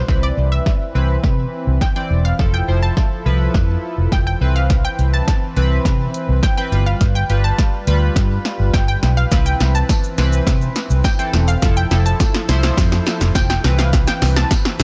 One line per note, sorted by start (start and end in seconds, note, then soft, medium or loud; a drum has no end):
0.00 0.24 C5 medium
0.08 0.29 C2 loud
0.08 0.79 E3 medium
0.08 2.37 E3 medium
0.08 0.79 C4 medium
0.08 2.37 C4 medium
0.08 2.37 B4 medium
0.08 0.79 B4 medium
0.08 kick loud
0.08 snare medium
0.23 0.50 D5 loud
0.37 0.58 C2 medium
0.52 0.79 E5 medium
0.66 kick loud
0.66 snare medium
0.95 1.16 C2 medium
0.95 1.78 E3 medium
0.95 1.78 C4 medium
0.95 1.78 B4 medium
1.24 1.45 C3 loud
1.24 kick loud
1.24 snare medium
1.67 1.78 C2 medium
1.81 1.88 G5 medium
1.81 kick loud
1.81 snare medium
1.96 2.31 E3 medium
1.96 2.31 C4 medium
1.96 2.32 D5 medium
1.96 2.09 G5 medium
2.10 2.31 E1 medium
2.25 2.55 F5 medium
2.39 2.60 F1 loud
2.39 2.63 F3 medium
2.39 4.39 F3 medium
2.39 4.39 E4 medium
2.39 2.63 E4 medium
2.39 4.39 A4 medium
2.39 2.63 A4 medium
2.39 kick loud
2.39 snare medium
2.54 2.83 G5 medium
2.68 2.89 F1 medium
2.68 3.15 F3 medium
2.68 3.15 E4 medium
2.68 3.16 C5 medium
2.83 3.09 A5 medium
2.97 kick loud
2.97 snare medium
3.26 3.47 C2 medium
3.26 4.20 F3 medium
3.26 4.20 E4 medium
3.26 4.20 B4 medium
3.54 3.75 F2 loud
3.54 kick loud
3.54 snare medium
3.98 4.08 F1 medium
4.12 4.33 F1 medium
4.12 4.26 G5 medium
4.12 kick loud
4.12 snare medium
4.27 4.57 G5 medium
4.41 4.83 C2 medium
4.41 5.36 E3 medium
4.41 6.70 E3 medium
4.41 5.36 C4 medium
4.41 6.70 C4 medium
4.41 11.58 B4 medium
4.41 5.36 B4 medium
4.56 4.85 F5 medium
4.70 kick loud
4.70 snare medium
4.70 closed hi-hat medium
4.85 5.11 G5 loud
4.99 5.20 C2 medium
4.99 closed hi-hat soft
5.14 5.40 A5 medium
5.28 kick loud
5.28 snare medium
5.28 closed hi-hat medium
5.56 5.77 C2 loud
5.56 6.39 E3 medium
5.56 6.39 C4 medium
5.56 6.39 B4 loud
5.56 closed hi-hat medium
5.85 6.06 C3 loud
5.85 kick loud
5.85 snare medium
5.85 closed hi-hat medium
6.14 closed hi-hat medium
6.29 6.39 C2 medium
6.43 6.56 G5 medium
6.43 kick loud
6.43 snare medium
6.43 closed hi-hat medium
6.57 6.72 E3 medium
6.57 6.72 C4 medium
6.57 6.71 B4 medium
6.57 6.87 G5 medium
6.72 6.93 G1 medium
6.72 7.19 G3 medium
6.72 9.29 G3 medium
6.72 9.29 F4 medium
6.72 7.19 F4 medium
6.72 7.19 B4 medium
6.72 closed hi-hat soft
6.86 7.16 F5 medium
7.01 7.22 G1 loud
7.01 kick loud
7.01 snare medium
7.01 closed hi-hat medium
7.15 7.45 G5 medium
7.29 7.51 G1 loud
7.29 7.77 G3 medium
7.29 7.77 F4 medium
7.29 7.77 B4 medium
7.29 closed hi-hat soft
7.44 7.71 A5 medium
7.59 kick loud
7.59 snare medium
7.59 closed hi-hat medium
7.87 8.08 D2 medium
7.87 8.82 G3 medium
7.87 8.82 F4 medium
7.87 8.82 B4 loud
7.87 closed hi-hat medium
8.16 8.37 G2 loud
8.16 kick loud
8.16 snare medium
8.16 closed hi-hat medium
8.45 snare medium
8.45 closed hi-hat medium
8.60 8.70 G1 medium
8.74 8.95 G1 loud
8.74 8.80 G5 medium
8.74 kick loud
8.74 snare medium
8.74 closed hi-hat medium
8.88 9.15 G5 medium
9.03 9.24 B1 medium
9.03 snare medium
9.03 closed hi-hat soft
9.17 9.44 F5 medium
9.31 9.53 C2 loud
9.31 10.02 E3 medium
9.31 11.60 E3 medium
9.31 11.60 C4 medium
9.31 10.03 C4 medium
9.31 10.03 B4 medium
9.31 kick loud
9.31 snare medium
9.31 closed hi-hat medium
9.31 shaker medium
9.46 9.76 G5 medium
9.46 shaker medium
9.60 9.81 C2 loud
9.60 snare medium
9.60 closed hi-hat soft
9.60 tambourine medium
9.60 shaker soft
9.75 10.02 A5 medium
9.75 shaker medium
9.89 kick loud
9.89 snare medium
9.89 closed hi-hat medium
9.89 tambourine medium
9.89 shaker medium
10.04 shaker medium
10.18 10.39 C2 medium
10.18 11.01 E3 medium
10.18 11.01 C4 medium
10.18 11.01 B4 loud
10.18 snare medium
10.18 closed hi-hat medium
10.18 tambourine medium
10.18 shaker medium
10.33 shaker medium
10.47 10.68 C3 loud
10.47 kick loud
10.47 snare medium
10.47 closed hi-hat medium
10.47 tambourine soft
10.47 shaker medium
10.61 shaker soft
10.76 snare medium
10.76 closed hi-hat medium
10.76 tambourine soft
10.76 shaker medium
10.90 11.01 C2 loud
10.90 shaker medium
11.04 11.11 G5 medium
11.04 kick loud
11.04 snare loud
11.04 closed hi-hat medium
11.04 tambourine medium
11.04 shaker medium
11.19 11.54 E3 medium
11.19 11.55 C4 medium
11.19 11.55 A4 medium
11.19 11.49 G5 medium
11.19 shaker medium
11.33 11.54 E1 medium
11.33 snare loud
11.33 closed hi-hat soft
11.33 tambourine soft
11.33 shaker soft
11.48 11.78 F5 medium
11.48 shaker medium
11.62 11.83 F1 loud
11.62 11.86 F3 medium
11.62 13.62 F3 medium
11.62 11.86 E4 medium
11.62 13.62 E4 medium
11.62 13.62 A4 medium
11.62 11.86 A4 medium
11.62 kick loud
11.62 snare loud
11.62 closed hi-hat medium
11.62 shaker medium
11.77 12.07 G5 loud
11.77 shaker medium
11.91 12.12 F1 medium
11.91 12.38 F3 medium
11.91 12.38 E4 medium
11.91 12.39 A4 medium
11.91 snare medium
11.91 closed hi-hat soft
11.91 tambourine medium
11.91 shaker soft
12.06 12.19 A5 medium
12.06 shaker medium
12.20 kick loud
12.20 snare loud
12.20 closed hi-hat medium
12.20 tambourine medium
12.20 shaker medium
12.34 snare loud
12.34 shaker medium
12.49 12.70 C2 medium
12.49 13.43 F3 medium
12.49 13.43 E4 medium
12.49 13.43 C5 loud
12.49 snare loud
12.49 closed hi-hat medium
12.49 tambourine medium
12.49 shaker medium
12.63 snare loud
12.63 shaker medium
12.77 12.98 F2 loud
12.77 kick loud
12.77 snare loud
12.77 closed hi-hat medium
12.77 tambourine soft
12.77 shaker medium
12.92 snare medium
12.92 shaker soft
13.07 snare loud
13.07 closed hi-hat medium
13.07 tambourine soft
13.07 shaker medium
13.21 13.31 F1 medium
13.21 snare loud
13.21 shaker medium
13.35 13.42 G5 medium
13.35 kick loud
13.35 snare loud
13.35 closed hi-hat medium
13.35 tambourine medium
13.35 shaker medium
13.50 13.80 G5 medium
13.50 snare loud
13.50 shaker medium
13.64 14.06 C2 loud
13.64 14.59 E3 medium
13.64 14.83 E3 medium
13.64 14.59 C4 medium
13.64 14.83 C4 medium
13.64 14.83 B4 medium
13.64 14.59 B4 medium
13.64 snare loud
13.64 closed hi-hat soft
13.64 shaker medium
13.79 14.05 F5 medium
13.79 snare loud
13.79 shaker medium
13.93 kick loud
13.93 snare loud
13.93 closed hi-hat medium
13.93 shaker medium
14.07 14.34 G5 loud
14.07 snare loud
14.07 shaker medium
14.22 14.43 C2 loud
14.22 snare loud
14.22 open hi-hat medium
14.22 tambourine medium
14.22 shaker medium
14.36 14.49 A5 medium
14.36 snare loud
14.36 shaker medium
14.51 kick loud
14.51 snare loud
14.51 closed hi-hat medium
14.51 tambourine medium
14.51 shaker medium
14.65 snare loud
14.65 shaker medium
14.80 14.83 C2 loud
14.80 14.83 E3 medium
14.80 14.83 C4 medium
14.80 snare loud
14.80 open hi-hat medium
14.80 tambourine medium
14.80 shaker medium